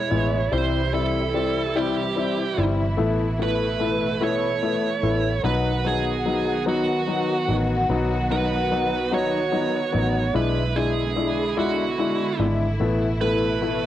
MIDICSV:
0, 0, Header, 1, 5, 480
1, 0, Start_track
1, 0, Key_signature, 4, "major"
1, 0, Tempo, 818554
1, 308, Time_signature, 6, 3, 24, 8
1, 8128, End_track
2, 0, Start_track
2, 0, Title_t, "Lead electric guitar"
2, 0, Program_c, 0, 29
2, 0, Note_on_c, 0, 73, 81
2, 310, Note_on_c, 0, 72, 72
2, 330, Note_off_c, 0, 73, 0
2, 551, Note_off_c, 0, 72, 0
2, 553, Note_on_c, 0, 69, 71
2, 1033, Note_on_c, 0, 67, 58
2, 1045, Note_off_c, 0, 69, 0
2, 1547, Note_off_c, 0, 67, 0
2, 2010, Note_on_c, 0, 71, 74
2, 2483, Note_off_c, 0, 71, 0
2, 2486, Note_on_c, 0, 73, 86
2, 3173, Note_off_c, 0, 73, 0
2, 3194, Note_on_c, 0, 71, 71
2, 3438, Note_off_c, 0, 71, 0
2, 3441, Note_on_c, 0, 68, 69
2, 3890, Note_off_c, 0, 68, 0
2, 3920, Note_on_c, 0, 66, 62
2, 4430, Note_off_c, 0, 66, 0
2, 4877, Note_on_c, 0, 71, 67
2, 5358, Note_off_c, 0, 71, 0
2, 5360, Note_on_c, 0, 73, 73
2, 6071, Note_off_c, 0, 73, 0
2, 6073, Note_on_c, 0, 71, 81
2, 6310, Note_on_c, 0, 68, 65
2, 6317, Note_off_c, 0, 71, 0
2, 6792, Note_off_c, 0, 68, 0
2, 6794, Note_on_c, 0, 66, 61
2, 7306, Note_off_c, 0, 66, 0
2, 7747, Note_on_c, 0, 71, 76
2, 8128, Note_off_c, 0, 71, 0
2, 8128, End_track
3, 0, Start_track
3, 0, Title_t, "Grand piano"
3, 0, Program_c, 1, 0
3, 62, Note_on_c, 1, 56, 60
3, 64, Note_on_c, 1, 59, 52
3, 64, Note_on_c, 1, 64, 61
3, 218, Note_off_c, 1, 56, 0
3, 219, Note_off_c, 1, 59, 0
3, 219, Note_off_c, 1, 64, 0
3, 304, Note_on_c, 1, 55, 68
3, 308, Note_on_c, 1, 60, 72
3, 309, Note_on_c, 1, 64, 71
3, 459, Note_off_c, 1, 55, 0
3, 461, Note_off_c, 1, 60, 0
3, 461, Note_off_c, 1, 64, 0
3, 546, Note_on_c, 1, 55, 57
3, 549, Note_on_c, 1, 60, 46
3, 551, Note_on_c, 1, 64, 61
3, 700, Note_off_c, 1, 55, 0
3, 702, Note_off_c, 1, 60, 0
3, 702, Note_off_c, 1, 64, 0
3, 788, Note_on_c, 1, 55, 60
3, 789, Note_on_c, 1, 60, 52
3, 791, Note_on_c, 1, 64, 61
3, 941, Note_off_c, 1, 55, 0
3, 941, Note_off_c, 1, 60, 0
3, 942, Note_off_c, 1, 64, 0
3, 1030, Note_on_c, 1, 55, 78
3, 1031, Note_on_c, 1, 60, 62
3, 1033, Note_on_c, 1, 64, 86
3, 1182, Note_off_c, 1, 55, 0
3, 1182, Note_off_c, 1, 60, 0
3, 1183, Note_off_c, 1, 64, 0
3, 1266, Note_on_c, 1, 55, 57
3, 1268, Note_on_c, 1, 60, 54
3, 1272, Note_on_c, 1, 64, 64
3, 1420, Note_off_c, 1, 55, 0
3, 1421, Note_off_c, 1, 60, 0
3, 1423, Note_off_c, 1, 64, 0
3, 1511, Note_on_c, 1, 55, 59
3, 1512, Note_on_c, 1, 60, 54
3, 1513, Note_on_c, 1, 64, 68
3, 1662, Note_off_c, 1, 55, 0
3, 1663, Note_off_c, 1, 60, 0
3, 1663, Note_off_c, 1, 64, 0
3, 1743, Note_on_c, 1, 57, 81
3, 1746, Note_on_c, 1, 59, 66
3, 1747, Note_on_c, 1, 64, 83
3, 1898, Note_off_c, 1, 57, 0
3, 1900, Note_off_c, 1, 59, 0
3, 1900, Note_off_c, 1, 64, 0
3, 1987, Note_on_c, 1, 57, 59
3, 1988, Note_on_c, 1, 59, 49
3, 1991, Note_on_c, 1, 64, 56
3, 2140, Note_off_c, 1, 57, 0
3, 2141, Note_off_c, 1, 59, 0
3, 2142, Note_off_c, 1, 64, 0
3, 2226, Note_on_c, 1, 57, 54
3, 2227, Note_on_c, 1, 59, 52
3, 2231, Note_on_c, 1, 64, 62
3, 2380, Note_off_c, 1, 57, 0
3, 2380, Note_off_c, 1, 59, 0
3, 2382, Note_off_c, 1, 64, 0
3, 2466, Note_on_c, 1, 57, 67
3, 2468, Note_on_c, 1, 59, 71
3, 2470, Note_on_c, 1, 64, 85
3, 2620, Note_off_c, 1, 57, 0
3, 2621, Note_off_c, 1, 59, 0
3, 2622, Note_off_c, 1, 64, 0
3, 2712, Note_on_c, 1, 57, 59
3, 2713, Note_on_c, 1, 59, 56
3, 2713, Note_on_c, 1, 64, 67
3, 2862, Note_off_c, 1, 57, 0
3, 2863, Note_off_c, 1, 59, 0
3, 2863, Note_off_c, 1, 64, 0
3, 2948, Note_on_c, 1, 57, 51
3, 2950, Note_on_c, 1, 59, 52
3, 2951, Note_on_c, 1, 64, 63
3, 3100, Note_off_c, 1, 57, 0
3, 3101, Note_off_c, 1, 59, 0
3, 3102, Note_off_c, 1, 64, 0
3, 3187, Note_on_c, 1, 54, 63
3, 3190, Note_on_c, 1, 59, 66
3, 3191, Note_on_c, 1, 63, 76
3, 3340, Note_off_c, 1, 54, 0
3, 3341, Note_off_c, 1, 59, 0
3, 3342, Note_off_c, 1, 63, 0
3, 3428, Note_on_c, 1, 54, 53
3, 3428, Note_on_c, 1, 59, 51
3, 3433, Note_on_c, 1, 63, 54
3, 3580, Note_off_c, 1, 59, 0
3, 3581, Note_off_c, 1, 54, 0
3, 3583, Note_off_c, 1, 63, 0
3, 3669, Note_on_c, 1, 54, 59
3, 3670, Note_on_c, 1, 59, 48
3, 3672, Note_on_c, 1, 63, 67
3, 3821, Note_off_c, 1, 54, 0
3, 3822, Note_off_c, 1, 59, 0
3, 3823, Note_off_c, 1, 63, 0
3, 3905, Note_on_c, 1, 54, 77
3, 3908, Note_on_c, 1, 59, 63
3, 3908, Note_on_c, 1, 63, 69
3, 4059, Note_off_c, 1, 54, 0
3, 4060, Note_off_c, 1, 59, 0
3, 4061, Note_off_c, 1, 63, 0
3, 4149, Note_on_c, 1, 54, 61
3, 4150, Note_on_c, 1, 59, 50
3, 4150, Note_on_c, 1, 63, 62
3, 4301, Note_off_c, 1, 54, 0
3, 4301, Note_off_c, 1, 59, 0
3, 4301, Note_off_c, 1, 63, 0
3, 4387, Note_on_c, 1, 54, 55
3, 4390, Note_on_c, 1, 59, 49
3, 4393, Note_on_c, 1, 63, 57
3, 4540, Note_off_c, 1, 54, 0
3, 4541, Note_off_c, 1, 59, 0
3, 4543, Note_off_c, 1, 63, 0
3, 4630, Note_on_c, 1, 59, 68
3, 4631, Note_on_c, 1, 54, 72
3, 4633, Note_on_c, 1, 63, 74
3, 4781, Note_off_c, 1, 59, 0
3, 4782, Note_off_c, 1, 54, 0
3, 4783, Note_off_c, 1, 63, 0
3, 4870, Note_on_c, 1, 54, 59
3, 4871, Note_on_c, 1, 59, 50
3, 4872, Note_on_c, 1, 63, 59
3, 5021, Note_off_c, 1, 54, 0
3, 5022, Note_off_c, 1, 59, 0
3, 5022, Note_off_c, 1, 63, 0
3, 5107, Note_on_c, 1, 54, 55
3, 5109, Note_on_c, 1, 59, 54
3, 5112, Note_on_c, 1, 63, 57
3, 5260, Note_off_c, 1, 54, 0
3, 5261, Note_off_c, 1, 59, 0
3, 5262, Note_off_c, 1, 63, 0
3, 5345, Note_on_c, 1, 54, 68
3, 5347, Note_on_c, 1, 59, 65
3, 5348, Note_on_c, 1, 63, 75
3, 5499, Note_off_c, 1, 54, 0
3, 5500, Note_off_c, 1, 59, 0
3, 5500, Note_off_c, 1, 63, 0
3, 5583, Note_on_c, 1, 54, 65
3, 5585, Note_on_c, 1, 59, 50
3, 5587, Note_on_c, 1, 63, 69
3, 5738, Note_off_c, 1, 54, 0
3, 5738, Note_off_c, 1, 59, 0
3, 5739, Note_off_c, 1, 63, 0
3, 5820, Note_on_c, 1, 54, 57
3, 5822, Note_on_c, 1, 59, 49
3, 5823, Note_on_c, 1, 63, 59
3, 5976, Note_off_c, 1, 54, 0
3, 5977, Note_off_c, 1, 59, 0
3, 5978, Note_off_c, 1, 63, 0
3, 6063, Note_on_c, 1, 56, 69
3, 6066, Note_on_c, 1, 62, 62
3, 6068, Note_on_c, 1, 64, 75
3, 6218, Note_off_c, 1, 56, 0
3, 6219, Note_off_c, 1, 62, 0
3, 6220, Note_off_c, 1, 64, 0
3, 6307, Note_on_c, 1, 56, 58
3, 6307, Note_on_c, 1, 62, 48
3, 6310, Note_on_c, 1, 64, 64
3, 6459, Note_off_c, 1, 56, 0
3, 6459, Note_off_c, 1, 62, 0
3, 6461, Note_off_c, 1, 64, 0
3, 6544, Note_on_c, 1, 56, 56
3, 6544, Note_on_c, 1, 62, 51
3, 6546, Note_on_c, 1, 64, 66
3, 6698, Note_off_c, 1, 56, 0
3, 6698, Note_off_c, 1, 62, 0
3, 6699, Note_off_c, 1, 64, 0
3, 6783, Note_on_c, 1, 56, 71
3, 6785, Note_on_c, 1, 62, 66
3, 6787, Note_on_c, 1, 64, 83
3, 6937, Note_off_c, 1, 56, 0
3, 6938, Note_off_c, 1, 62, 0
3, 6939, Note_off_c, 1, 64, 0
3, 7028, Note_on_c, 1, 56, 57
3, 7029, Note_on_c, 1, 62, 51
3, 7032, Note_on_c, 1, 64, 70
3, 7179, Note_off_c, 1, 56, 0
3, 7180, Note_off_c, 1, 62, 0
3, 7182, Note_off_c, 1, 64, 0
3, 7265, Note_on_c, 1, 56, 56
3, 7266, Note_on_c, 1, 62, 56
3, 7268, Note_on_c, 1, 64, 68
3, 7418, Note_off_c, 1, 56, 0
3, 7419, Note_off_c, 1, 62, 0
3, 7419, Note_off_c, 1, 64, 0
3, 7504, Note_on_c, 1, 57, 66
3, 7509, Note_on_c, 1, 59, 69
3, 7509, Note_on_c, 1, 64, 83
3, 7657, Note_off_c, 1, 57, 0
3, 7660, Note_off_c, 1, 59, 0
3, 7660, Note_off_c, 1, 64, 0
3, 7747, Note_on_c, 1, 57, 59
3, 7750, Note_on_c, 1, 59, 52
3, 7751, Note_on_c, 1, 64, 56
3, 7899, Note_off_c, 1, 57, 0
3, 7900, Note_off_c, 1, 59, 0
3, 7901, Note_off_c, 1, 64, 0
3, 7986, Note_on_c, 1, 57, 62
3, 7987, Note_on_c, 1, 59, 54
3, 7989, Note_on_c, 1, 64, 64
3, 8128, Note_off_c, 1, 57, 0
3, 8128, Note_off_c, 1, 59, 0
3, 8128, Note_off_c, 1, 64, 0
3, 8128, End_track
4, 0, Start_track
4, 0, Title_t, "String section"
4, 0, Program_c, 2, 48
4, 0, Note_on_c, 2, 47, 55
4, 0, Note_on_c, 2, 52, 52
4, 0, Note_on_c, 2, 56, 51
4, 0, Note_on_c, 2, 64, 65
4, 290, Note_off_c, 2, 56, 0
4, 293, Note_off_c, 2, 47, 0
4, 293, Note_off_c, 2, 52, 0
4, 307, Note_on_c, 2, 55, 54
4, 309, Note_on_c, 2, 48, 62
4, 310, Note_on_c, 2, 52, 50
4, 1733, Note_off_c, 2, 55, 0
4, 1734, Note_off_c, 2, 48, 0
4, 1747, Note_on_c, 2, 57, 56
4, 1749, Note_on_c, 2, 47, 62
4, 3162, Note_off_c, 2, 64, 0
4, 3165, Note_off_c, 2, 52, 0
4, 3173, Note_off_c, 2, 57, 0
4, 3174, Note_off_c, 2, 47, 0
4, 3190, Note_on_c, 2, 51, 60
4, 3191, Note_on_c, 2, 59, 53
4, 3191, Note_on_c, 2, 66, 69
4, 3194, Note_on_c, 2, 54, 53
4, 6044, Note_off_c, 2, 51, 0
4, 6045, Note_off_c, 2, 66, 0
4, 6046, Note_off_c, 2, 54, 0
4, 6061, Note_on_c, 2, 56, 53
4, 6062, Note_on_c, 2, 50, 60
4, 6062, Note_on_c, 2, 64, 64
4, 7483, Note_off_c, 2, 59, 0
4, 7488, Note_off_c, 2, 56, 0
4, 7489, Note_off_c, 2, 50, 0
4, 7509, Note_on_c, 2, 47, 56
4, 7509, Note_on_c, 2, 52, 57
4, 7510, Note_on_c, 2, 57, 53
4, 8128, Note_off_c, 2, 47, 0
4, 8128, Note_off_c, 2, 52, 0
4, 8128, Note_off_c, 2, 57, 0
4, 8128, Note_off_c, 2, 64, 0
4, 8128, End_track
5, 0, Start_track
5, 0, Title_t, "Fingered electric bass"
5, 0, Program_c, 3, 33
5, 69, Note_on_c, 3, 33, 64
5, 294, Note_off_c, 3, 33, 0
5, 308, Note_on_c, 3, 36, 79
5, 1484, Note_off_c, 3, 36, 0
5, 1513, Note_on_c, 3, 31, 70
5, 1736, Note_off_c, 3, 31, 0
5, 1751, Note_on_c, 3, 33, 80
5, 2925, Note_off_c, 3, 33, 0
5, 2950, Note_on_c, 3, 33, 66
5, 3174, Note_off_c, 3, 33, 0
5, 3189, Note_on_c, 3, 35, 70
5, 4364, Note_off_c, 3, 35, 0
5, 4389, Note_on_c, 3, 33, 56
5, 4614, Note_off_c, 3, 33, 0
5, 4628, Note_on_c, 3, 35, 74
5, 5804, Note_off_c, 3, 35, 0
5, 5832, Note_on_c, 3, 33, 58
5, 6055, Note_off_c, 3, 33, 0
5, 6068, Note_on_c, 3, 35, 83
5, 7243, Note_off_c, 3, 35, 0
5, 7266, Note_on_c, 3, 32, 68
5, 7491, Note_off_c, 3, 32, 0
5, 7507, Note_on_c, 3, 33, 77
5, 8128, Note_off_c, 3, 33, 0
5, 8128, End_track
0, 0, End_of_file